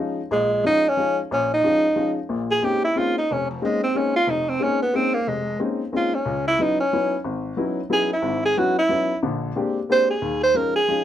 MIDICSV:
0, 0, Header, 1, 3, 480
1, 0, Start_track
1, 0, Tempo, 330033
1, 448, Time_signature, 3, 2, 24, 8
1, 16059, End_track
2, 0, Start_track
2, 0, Title_t, "Tenor saxophone"
2, 0, Program_c, 0, 66
2, 465, Note_on_c, 0, 56, 94
2, 903, Note_off_c, 0, 56, 0
2, 967, Note_on_c, 0, 63, 112
2, 1290, Note_on_c, 0, 61, 108
2, 1312, Note_off_c, 0, 63, 0
2, 1738, Note_off_c, 0, 61, 0
2, 1938, Note_on_c, 0, 61, 97
2, 2192, Note_off_c, 0, 61, 0
2, 2237, Note_on_c, 0, 63, 98
2, 3114, Note_off_c, 0, 63, 0
2, 3655, Note_on_c, 0, 68, 89
2, 3854, Note_on_c, 0, 67, 86
2, 3876, Note_off_c, 0, 68, 0
2, 4130, Note_off_c, 0, 67, 0
2, 4138, Note_on_c, 0, 64, 91
2, 4338, Note_on_c, 0, 65, 95
2, 4360, Note_off_c, 0, 64, 0
2, 4612, Note_off_c, 0, 65, 0
2, 4625, Note_on_c, 0, 63, 89
2, 4835, Note_on_c, 0, 61, 84
2, 4856, Note_off_c, 0, 63, 0
2, 5097, Note_off_c, 0, 61, 0
2, 5105, Note_on_c, 0, 53, 46
2, 5309, Note_on_c, 0, 56, 76
2, 5331, Note_off_c, 0, 53, 0
2, 5569, Note_off_c, 0, 56, 0
2, 5578, Note_on_c, 0, 60, 89
2, 5777, Note_on_c, 0, 61, 77
2, 5799, Note_off_c, 0, 60, 0
2, 6041, Note_off_c, 0, 61, 0
2, 6049, Note_on_c, 0, 65, 105
2, 6254, Note_on_c, 0, 63, 83
2, 6276, Note_off_c, 0, 65, 0
2, 6533, Note_on_c, 0, 60, 88
2, 6554, Note_off_c, 0, 63, 0
2, 6737, Note_on_c, 0, 61, 100
2, 6759, Note_off_c, 0, 60, 0
2, 7006, Note_off_c, 0, 61, 0
2, 7014, Note_on_c, 0, 59, 89
2, 7208, Note_on_c, 0, 60, 91
2, 7230, Note_off_c, 0, 59, 0
2, 7474, Note_on_c, 0, 58, 82
2, 7496, Note_off_c, 0, 60, 0
2, 7685, Note_on_c, 0, 56, 83
2, 7707, Note_off_c, 0, 58, 0
2, 8147, Note_off_c, 0, 56, 0
2, 8674, Note_on_c, 0, 65, 84
2, 8939, Note_on_c, 0, 61, 78
2, 8961, Note_off_c, 0, 65, 0
2, 9404, Note_off_c, 0, 61, 0
2, 9416, Note_on_c, 0, 64, 99
2, 9633, Note_on_c, 0, 63, 86
2, 9654, Note_off_c, 0, 64, 0
2, 9887, Note_off_c, 0, 63, 0
2, 9895, Note_on_c, 0, 61, 88
2, 10499, Note_off_c, 0, 61, 0
2, 11530, Note_on_c, 0, 68, 100
2, 11790, Note_off_c, 0, 68, 0
2, 11829, Note_on_c, 0, 64, 83
2, 12257, Note_off_c, 0, 64, 0
2, 12295, Note_on_c, 0, 68, 106
2, 12485, Note_on_c, 0, 66, 94
2, 12507, Note_off_c, 0, 68, 0
2, 12767, Note_off_c, 0, 66, 0
2, 12778, Note_on_c, 0, 64, 98
2, 13380, Note_off_c, 0, 64, 0
2, 14428, Note_on_c, 0, 72, 108
2, 14679, Note_off_c, 0, 72, 0
2, 14696, Note_on_c, 0, 68, 81
2, 15129, Note_off_c, 0, 68, 0
2, 15173, Note_on_c, 0, 72, 110
2, 15367, Note_on_c, 0, 70, 93
2, 15389, Note_off_c, 0, 72, 0
2, 15641, Note_off_c, 0, 70, 0
2, 15650, Note_on_c, 0, 68, 107
2, 16059, Note_off_c, 0, 68, 0
2, 16059, End_track
3, 0, Start_track
3, 0, Title_t, "Grand piano"
3, 0, Program_c, 1, 0
3, 0, Note_on_c, 1, 53, 55
3, 0, Note_on_c, 1, 56, 50
3, 0, Note_on_c, 1, 61, 50
3, 0, Note_on_c, 1, 63, 60
3, 283, Note_off_c, 1, 53, 0
3, 285, Note_off_c, 1, 56, 0
3, 286, Note_off_c, 1, 61, 0
3, 287, Note_off_c, 1, 63, 0
3, 451, Note_on_c, 1, 34, 76
3, 862, Note_off_c, 1, 34, 0
3, 931, Note_on_c, 1, 53, 54
3, 935, Note_on_c, 1, 61, 51
3, 937, Note_on_c, 1, 56, 54
3, 950, Note_on_c, 1, 63, 64
3, 1246, Note_off_c, 1, 53, 0
3, 1248, Note_off_c, 1, 61, 0
3, 1249, Note_off_c, 1, 56, 0
3, 1256, Note_off_c, 1, 63, 0
3, 1412, Note_on_c, 1, 53, 57
3, 1418, Note_on_c, 1, 61, 52
3, 1421, Note_on_c, 1, 56, 49
3, 1424, Note_on_c, 1, 63, 59
3, 1726, Note_off_c, 1, 53, 0
3, 1730, Note_off_c, 1, 61, 0
3, 1731, Note_off_c, 1, 56, 0
3, 1733, Note_off_c, 1, 63, 0
3, 1910, Note_on_c, 1, 34, 73
3, 2312, Note_off_c, 1, 34, 0
3, 2379, Note_on_c, 1, 53, 54
3, 2391, Note_on_c, 1, 61, 53
3, 2392, Note_on_c, 1, 56, 49
3, 2393, Note_on_c, 1, 63, 61
3, 2690, Note_off_c, 1, 53, 0
3, 2696, Note_off_c, 1, 61, 0
3, 2697, Note_off_c, 1, 56, 0
3, 2697, Note_off_c, 1, 63, 0
3, 2850, Note_on_c, 1, 53, 53
3, 2850, Note_on_c, 1, 56, 50
3, 2855, Note_on_c, 1, 61, 48
3, 2863, Note_on_c, 1, 63, 63
3, 3166, Note_off_c, 1, 53, 0
3, 3166, Note_off_c, 1, 56, 0
3, 3168, Note_off_c, 1, 61, 0
3, 3172, Note_off_c, 1, 63, 0
3, 3333, Note_on_c, 1, 46, 67
3, 3334, Note_on_c, 1, 34, 66
3, 3743, Note_off_c, 1, 46, 0
3, 3744, Note_off_c, 1, 34, 0
3, 3806, Note_on_c, 1, 58, 47
3, 3810, Note_on_c, 1, 56, 53
3, 3815, Note_on_c, 1, 60, 48
3, 3817, Note_on_c, 1, 61, 48
3, 3821, Note_on_c, 1, 63, 58
3, 4124, Note_off_c, 1, 58, 0
3, 4126, Note_off_c, 1, 56, 0
3, 4128, Note_off_c, 1, 60, 0
3, 4129, Note_off_c, 1, 61, 0
3, 4131, Note_off_c, 1, 63, 0
3, 4296, Note_on_c, 1, 60, 51
3, 4297, Note_on_c, 1, 56, 50
3, 4302, Note_on_c, 1, 58, 47
3, 4309, Note_on_c, 1, 61, 51
3, 4311, Note_on_c, 1, 63, 58
3, 4609, Note_off_c, 1, 56, 0
3, 4609, Note_off_c, 1, 60, 0
3, 4612, Note_off_c, 1, 58, 0
3, 4615, Note_off_c, 1, 61, 0
3, 4616, Note_off_c, 1, 63, 0
3, 4813, Note_on_c, 1, 29, 69
3, 5205, Note_off_c, 1, 29, 0
3, 5260, Note_on_c, 1, 58, 53
3, 5265, Note_on_c, 1, 56, 58
3, 5266, Note_on_c, 1, 61, 52
3, 5267, Note_on_c, 1, 63, 60
3, 5272, Note_on_c, 1, 60, 50
3, 5571, Note_off_c, 1, 58, 0
3, 5574, Note_off_c, 1, 56, 0
3, 5574, Note_off_c, 1, 61, 0
3, 5574, Note_off_c, 1, 63, 0
3, 5577, Note_off_c, 1, 60, 0
3, 5737, Note_on_c, 1, 56, 52
3, 5746, Note_on_c, 1, 58, 51
3, 5751, Note_on_c, 1, 63, 58
3, 5752, Note_on_c, 1, 60, 51
3, 5760, Note_on_c, 1, 61, 52
3, 6050, Note_off_c, 1, 56, 0
3, 6054, Note_off_c, 1, 58, 0
3, 6056, Note_off_c, 1, 63, 0
3, 6057, Note_off_c, 1, 60, 0
3, 6061, Note_off_c, 1, 61, 0
3, 6210, Note_on_c, 1, 29, 69
3, 6622, Note_off_c, 1, 29, 0
3, 6685, Note_on_c, 1, 58, 51
3, 6686, Note_on_c, 1, 56, 55
3, 6695, Note_on_c, 1, 60, 51
3, 6698, Note_on_c, 1, 63, 61
3, 6701, Note_on_c, 1, 61, 51
3, 7004, Note_off_c, 1, 56, 0
3, 7004, Note_off_c, 1, 58, 0
3, 7009, Note_off_c, 1, 60, 0
3, 7010, Note_off_c, 1, 63, 0
3, 7012, Note_off_c, 1, 61, 0
3, 7175, Note_on_c, 1, 56, 55
3, 7178, Note_on_c, 1, 58, 50
3, 7181, Note_on_c, 1, 60, 52
3, 7184, Note_on_c, 1, 61, 49
3, 7189, Note_on_c, 1, 63, 65
3, 7489, Note_off_c, 1, 56, 0
3, 7491, Note_off_c, 1, 58, 0
3, 7492, Note_off_c, 1, 60, 0
3, 7494, Note_off_c, 1, 61, 0
3, 7496, Note_off_c, 1, 63, 0
3, 7667, Note_on_c, 1, 29, 66
3, 8072, Note_off_c, 1, 29, 0
3, 8137, Note_on_c, 1, 56, 53
3, 8137, Note_on_c, 1, 58, 50
3, 8140, Note_on_c, 1, 60, 52
3, 8141, Note_on_c, 1, 61, 51
3, 8144, Note_on_c, 1, 63, 60
3, 8450, Note_off_c, 1, 56, 0
3, 8450, Note_off_c, 1, 58, 0
3, 8452, Note_off_c, 1, 60, 0
3, 8452, Note_off_c, 1, 61, 0
3, 8454, Note_off_c, 1, 63, 0
3, 8612, Note_on_c, 1, 58, 47
3, 8617, Note_on_c, 1, 56, 53
3, 8624, Note_on_c, 1, 61, 48
3, 8624, Note_on_c, 1, 63, 57
3, 8627, Note_on_c, 1, 60, 49
3, 8928, Note_off_c, 1, 58, 0
3, 8930, Note_off_c, 1, 56, 0
3, 8934, Note_off_c, 1, 61, 0
3, 8934, Note_off_c, 1, 63, 0
3, 8935, Note_off_c, 1, 60, 0
3, 9096, Note_on_c, 1, 37, 69
3, 9506, Note_off_c, 1, 37, 0
3, 9584, Note_on_c, 1, 54, 53
3, 9588, Note_on_c, 1, 63, 50
3, 9589, Note_on_c, 1, 61, 52
3, 9590, Note_on_c, 1, 59, 48
3, 9601, Note_on_c, 1, 64, 59
3, 9894, Note_off_c, 1, 54, 0
3, 9896, Note_off_c, 1, 63, 0
3, 9897, Note_off_c, 1, 59, 0
3, 9897, Note_off_c, 1, 61, 0
3, 9902, Note_off_c, 1, 64, 0
3, 10078, Note_on_c, 1, 54, 52
3, 10082, Note_on_c, 1, 59, 50
3, 10082, Note_on_c, 1, 61, 52
3, 10087, Note_on_c, 1, 63, 53
3, 10088, Note_on_c, 1, 64, 59
3, 10382, Note_off_c, 1, 54, 0
3, 10383, Note_off_c, 1, 61, 0
3, 10384, Note_off_c, 1, 59, 0
3, 10386, Note_off_c, 1, 63, 0
3, 10386, Note_off_c, 1, 64, 0
3, 10537, Note_on_c, 1, 32, 71
3, 10947, Note_off_c, 1, 32, 0
3, 11009, Note_on_c, 1, 54, 54
3, 11016, Note_on_c, 1, 59, 52
3, 11019, Note_on_c, 1, 61, 52
3, 11021, Note_on_c, 1, 63, 53
3, 11024, Note_on_c, 1, 64, 63
3, 11327, Note_off_c, 1, 54, 0
3, 11331, Note_off_c, 1, 59, 0
3, 11332, Note_off_c, 1, 61, 0
3, 11333, Note_off_c, 1, 63, 0
3, 11334, Note_off_c, 1, 64, 0
3, 11485, Note_on_c, 1, 54, 54
3, 11485, Note_on_c, 1, 61, 49
3, 11488, Note_on_c, 1, 59, 50
3, 11492, Note_on_c, 1, 63, 51
3, 11495, Note_on_c, 1, 64, 62
3, 11805, Note_off_c, 1, 54, 0
3, 11805, Note_off_c, 1, 61, 0
3, 11806, Note_off_c, 1, 59, 0
3, 11808, Note_off_c, 1, 63, 0
3, 11810, Note_off_c, 1, 64, 0
3, 11961, Note_on_c, 1, 32, 72
3, 11965, Note_on_c, 1, 44, 73
3, 12379, Note_off_c, 1, 32, 0
3, 12381, Note_off_c, 1, 44, 0
3, 12469, Note_on_c, 1, 54, 58
3, 12473, Note_on_c, 1, 59, 54
3, 12475, Note_on_c, 1, 63, 52
3, 12478, Note_on_c, 1, 61, 52
3, 12481, Note_on_c, 1, 64, 60
3, 12777, Note_off_c, 1, 54, 0
3, 12779, Note_off_c, 1, 59, 0
3, 12780, Note_off_c, 1, 63, 0
3, 12781, Note_off_c, 1, 61, 0
3, 12783, Note_off_c, 1, 64, 0
3, 12932, Note_on_c, 1, 54, 54
3, 12945, Note_on_c, 1, 59, 50
3, 12946, Note_on_c, 1, 63, 54
3, 12948, Note_on_c, 1, 61, 51
3, 12950, Note_on_c, 1, 64, 62
3, 13248, Note_off_c, 1, 54, 0
3, 13255, Note_off_c, 1, 59, 0
3, 13255, Note_off_c, 1, 63, 0
3, 13256, Note_off_c, 1, 61, 0
3, 13257, Note_off_c, 1, 64, 0
3, 13420, Note_on_c, 1, 34, 70
3, 13422, Note_on_c, 1, 50, 73
3, 13828, Note_off_c, 1, 34, 0
3, 13829, Note_off_c, 1, 50, 0
3, 13897, Note_on_c, 1, 56, 55
3, 13899, Note_on_c, 1, 58, 55
3, 13905, Note_on_c, 1, 60, 50
3, 13911, Note_on_c, 1, 62, 53
3, 13917, Note_on_c, 1, 67, 68
3, 14210, Note_off_c, 1, 56, 0
3, 14212, Note_off_c, 1, 58, 0
3, 14214, Note_off_c, 1, 60, 0
3, 14217, Note_off_c, 1, 62, 0
3, 14220, Note_off_c, 1, 67, 0
3, 14386, Note_on_c, 1, 58, 51
3, 14392, Note_on_c, 1, 56, 57
3, 14396, Note_on_c, 1, 60, 55
3, 14403, Note_on_c, 1, 67, 64
3, 14406, Note_on_c, 1, 62, 50
3, 14695, Note_off_c, 1, 58, 0
3, 14698, Note_off_c, 1, 56, 0
3, 14700, Note_off_c, 1, 60, 0
3, 14703, Note_off_c, 1, 67, 0
3, 14705, Note_off_c, 1, 62, 0
3, 14860, Note_on_c, 1, 39, 68
3, 14865, Note_on_c, 1, 51, 66
3, 15268, Note_off_c, 1, 39, 0
3, 15270, Note_off_c, 1, 51, 0
3, 15335, Note_on_c, 1, 53, 54
3, 15337, Note_on_c, 1, 56, 49
3, 15346, Note_on_c, 1, 63, 60
3, 15352, Note_on_c, 1, 61, 52
3, 15649, Note_off_c, 1, 53, 0
3, 15650, Note_off_c, 1, 56, 0
3, 15654, Note_off_c, 1, 63, 0
3, 15657, Note_off_c, 1, 61, 0
3, 15830, Note_on_c, 1, 53, 57
3, 15833, Note_on_c, 1, 56, 50
3, 15834, Note_on_c, 1, 63, 59
3, 15836, Note_on_c, 1, 61, 50
3, 16059, Note_off_c, 1, 53, 0
3, 16059, Note_off_c, 1, 56, 0
3, 16059, Note_off_c, 1, 61, 0
3, 16059, Note_off_c, 1, 63, 0
3, 16059, End_track
0, 0, End_of_file